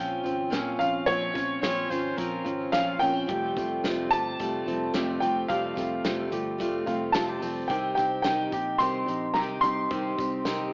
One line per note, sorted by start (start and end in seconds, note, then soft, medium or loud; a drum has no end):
0.00 0.20 A#1 medium
0.00 0.24 F3 medium
0.00 0.24 C4 medium
0.00 0.25 C4 medium
0.00 0.24 C#4 medium
0.00 0.52 C#4 medium
0.00 0.22 F4 medium
0.00 0.48 G5 loud
0.23 0.48 G#1 medium
0.23 0.50 C4 soft
0.23 0.51 C#4 medium
0.23 0.51 F4 medium
0.23 closed hi-hat medium
0.23 tambourine soft
0.50 0.75 A#1 loud
0.50 0.79 A#2 medium
0.50 0.80 F3 medium
0.50 0.80 C4 medium
0.50 0.79 C#4 loud
0.50 0.77 F4 medium
0.50 snare loud
0.50 closed hi-hat medium
0.50 tambourine medium
0.79 1.03 A#1 loud
0.79 1.06 C4 soft
0.79 1.06 C#4 soft
0.79 1.07 F4 medium
0.79 1.08 F5 loud
0.79 closed hi-hat medium
0.79 tambourine medium
1.06 1.30 A#1 loud
1.06 1.35 A#2 medium
1.06 1.35 F3 medium
1.06 1.35 C4 medium
1.06 1.34 C#4 medium
1.06 1.33 F4 medium
1.06 1.59 C#5 loud
1.06 kick loud
1.06 closed hi-hat medium
1.34 1.58 A#1 medium
1.34 2.18 F3 medium
1.34 1.62 C4 soft
1.34 1.62 C#4 medium
1.34 1.62 F4 medium
1.34 kick loud
1.34 snare soft
1.34 closed hi-hat medium
1.34 tambourine medium
1.62 1.86 A#1 loud
1.62 1.90 A#2 medium
1.62 1.90 F3 medium
1.62 1.91 C4 medium
1.62 1.90 C#4 medium
1.62 1.89 F4 medium
1.62 1.92 C#5 loud
1.62 snare loud
1.62 closed hi-hat loud
1.62 tambourine medium
1.90 2.13 G#1 medium
1.90 2.16 C4 soft
1.90 2.17 C#4 medium
1.90 2.18 F4 medium
1.90 2.19 C5 loud
1.90 closed hi-hat medium
1.90 tambourine medium
2.17 2.41 A#1 loud
2.17 2.45 F3 medium
2.17 2.46 C4 medium
2.17 2.45 C#4 medium
2.17 2.43 F4 medium
2.17 2.59 A#4 medium
2.17 kick loud
2.17 closed hi-hat loud
2.21 tambourine medium
2.45 2.68 G#1 loud
2.45 2.72 C4 soft
2.45 2.73 C#4 medium
2.45 2.73 F4 medium
2.45 closed hi-hat medium
2.45 tambourine soft
2.72 2.97 A#1 medium
2.72 3.01 A#2 medium
2.72 3.01 F3 medium
2.72 3.01 C4 medium
2.72 3.00 C#4 medium
2.72 2.98 F4 medium
2.72 2.99 F5 loud
2.72 snare loud
2.72 closed hi-hat medium
2.72 tambourine loud
2.99 3.25 A#1 loud
2.99 3.14 A#3 medium
2.99 3.28 C4 soft
2.99 3.29 C#4 medium
2.99 3.28 F4 medium
2.99 3.79 G5 loud
2.99 closed hi-hat medium
2.99 tambourine medium
3.14 3.34 C4 medium
3.28 3.52 F1 loud
3.28 3.56 F2 medium
3.28 3.56 C3 medium
3.28 5.48 F3 medium
3.28 3.57 G3 medium
3.28 3.57 A3 medium
3.28 3.56 C4 medium
3.28 3.55 F4 medium
3.28 4.11 G4 medium
3.28 kick loud
3.28 closed hi-hat loud
3.28 tambourine soft
3.56 3.79 F1 medium
3.56 3.83 G3 soft
3.56 3.84 A3 medium
3.56 3.84 C4 medium
3.56 3.84 F4 medium
3.56 kick loud
3.56 closed hi-hat medium
3.56 tambourine medium
3.84 4.07 F1 loud
3.84 4.12 F2 medium
3.84 4.12 C3 medium
3.84 4.12 G3 medium
3.84 4.12 A3 medium
3.84 4.11 C4 medium
3.84 4.09 F4 medium
3.84 snare loud
3.84 closed hi-hat loud
3.84 tambourine medium
4.11 4.34 G1 medium
4.11 4.38 G3 soft
4.11 4.39 A3 medium
4.11 4.39 C4 medium
4.11 4.39 F4 medium
4.11 4.94 G4 medium
4.11 4.90 A5 loud
4.11 kick medium
4.11 closed hi-hat medium
4.11 tambourine medium
4.40 4.62 F1 loud
4.40 4.67 G3 medium
4.40 4.67 A3 medium
4.40 4.66 C4 medium
4.40 4.64 F4 medium
4.40 kick medium
4.40 closed hi-hat loud
4.40 tambourine medium
4.66 4.89 F1 medium
4.66 4.93 G3 soft
4.66 4.93 A3 soft
4.66 4.94 C4 medium
4.66 4.94 F4 medium
4.66 closed hi-hat medium
4.66 tambourine soft
4.94 5.18 F1 loud
4.94 5.22 F2 medium
4.94 5.22 C3 medium
4.94 5.22 G3 medium
4.94 5.22 A3 loud
4.94 5.20 C4 loud
4.94 5.19 F4 loud
4.94 5.50 G4 medium
4.94 snare loud
4.94 closed hi-hat medium
4.94 tambourine medium
5.20 5.45 F1 loud
5.20 5.48 G3 soft
5.20 5.48 A3 medium
5.20 5.49 C4 medium
5.20 5.49 F4 medium
5.20 5.50 G5 loud
5.20 closed hi-hat medium
5.20 tambourine medium
5.48 5.72 F1 loud
5.48 5.77 F2 medium
5.48 5.77 C3 medium
5.48 7.70 F3 medium
5.48 5.76 G3 medium
5.48 5.76 A3 medium
5.48 5.75 C4 medium
5.48 5.74 F4 medium
5.48 6.33 G4 medium
5.48 6.00 F5 loud
5.48 kick loud
5.48 closed hi-hat loud
5.48 tambourine soft
5.75 6.00 F1 loud
5.75 6.04 G3 medium
5.75 6.04 A3 soft
5.75 6.04 C4 medium
5.75 6.04 F4 medium
5.75 kick medium
5.75 snare soft
5.75 closed hi-hat medium
5.75 tambourine medium
6.04 6.27 F1 loud
6.04 6.32 F2 medium
6.04 6.32 C3 medium
6.04 6.32 G3 medium
6.04 6.31 A3 medium
6.04 6.31 C4 medium
6.04 6.29 F4 medium
6.04 snare loud
6.04 closed hi-hat medium
6.04 tambourine medium
6.30 6.60 G1 medium
6.30 6.57 G3 soft
6.30 6.59 A3 medium
6.30 6.59 C4 medium
6.30 6.59 F4 medium
6.30 7.14 G4 medium
6.30 closed hi-hat medium
6.30 tambourine medium
6.58 6.83 F1 loud
6.58 6.87 G3 medium
6.58 6.87 A3 medium
6.58 6.86 C4 medium
6.58 6.85 F4 medium
6.58 kick medium
6.58 closed hi-hat loud
6.58 tambourine medium
6.86 7.10 F1 medium
6.86 7.13 G3 soft
6.86 7.14 A3 soft
6.86 7.14 C4 medium
6.86 7.14 F4 medium
6.86 7.13 F5 medium
6.86 kick medium
6.86 closed hi-hat medium
6.86 tambourine soft
7.12 7.37 F1 medium
7.12 7.42 F2 medium
7.12 7.42 C3 medium
7.12 7.42 G3 medium
7.12 7.42 A3 medium
7.12 7.41 C4 medium
7.12 7.39 F4 medium
7.12 7.71 A5 medium
7.12 snare loud
7.12 closed hi-hat medium
7.12 tambourine medium
7.29 7.70 G4 medium
7.40 7.65 F1 medium
7.40 7.69 G3 soft
7.40 7.69 A3 medium
7.40 7.68 C4 medium
7.40 7.69 F4 medium
7.40 open hi-hat medium
7.40 tambourine medium
7.68 7.92 C2 loud
7.68 7.97 C3 medium
7.68 7.97 D#3 medium
7.68 7.98 C4 medium
7.68 7.97 D#4 medium
7.68 7.95 G4 medium
7.68 7.94 G5 medium
7.68 kick loud
7.68 closed hi-hat loud
7.95 8.20 C2 medium
7.95 8.25 D#4 soft
7.95 8.25 G4 medium
7.95 8.21 G5 medium
7.95 kick loud
7.95 snare soft
7.95 closed hi-hat medium
7.95 tambourine medium
7.99 8.24 C4 soft
8.22 8.48 C2 loud
8.22 8.53 C3 medium
8.22 8.53 D#3 medium
8.22 8.53 C4 medium
8.22 8.53 D#4 medium
8.22 8.51 G4 medium
8.22 8.81 G5 medium
8.22 snare loud
8.22 closed hi-hat medium
8.22 tambourine medium
8.52 8.75 A#1 loud
8.52 8.78 C4 soft
8.52 8.80 D#4 soft
8.52 8.80 G4 medium
8.52 kick loud
8.52 closed hi-hat medium
8.52 tambourine soft
8.79 9.03 C2 loud
8.79 9.07 D#3 medium
8.79 9.08 C4 medium
8.79 9.06 D#4 medium
8.79 9.05 G4 medium
8.79 9.31 C6 loud
8.79 kick medium
8.79 closed hi-hat loud
8.79 tambourine medium
9.06 9.36 A#1 loud
9.06 9.35 C4 soft
9.06 9.36 D#4 medium
9.06 9.35 G4 medium
9.06 closed hi-hat medium
9.06 tambourine soft
9.34 9.59 C2 loud
9.34 9.63 C3 medium
9.34 9.63 D#3 medium
9.34 9.64 C4 medium
9.34 9.63 D#4 medium
9.34 9.62 G4 medium
9.34 9.40 A#5 loud
9.34 snare loud
9.34 closed hi-hat medium
9.34 tambourine loud
9.61 9.86 C2 loud
9.61 9.91 D#4 medium
9.61 9.91 G4 medium
9.61 10.69 C6 loud
9.61 closed hi-hat medium
9.61 tambourine medium
9.66 9.91 C4 soft
9.91 10.14 C2 loud
9.91 10.19 C3 medium
9.91 10.19 D#3 medium
9.91 10.19 C4 medium
9.91 10.19 D#4 medium
9.91 10.17 G4 medium
9.91 kick loud
9.91 closed hi-hat loud
10.18 10.41 C2 loud
10.18 10.45 C4 soft
10.18 10.46 D#4 medium
10.18 10.46 G4 medium
10.18 kick loud
10.18 closed hi-hat medium
10.18 tambourine medium
10.45 10.69 C2 loud
10.45 10.73 C3 medium
10.45 10.73 D#3 medium
10.45 10.73 C4 medium
10.45 10.73 D#4 medium
10.45 10.71 G4 medium
10.45 snare loud
10.45 closed hi-hat loud
10.45 tambourine medium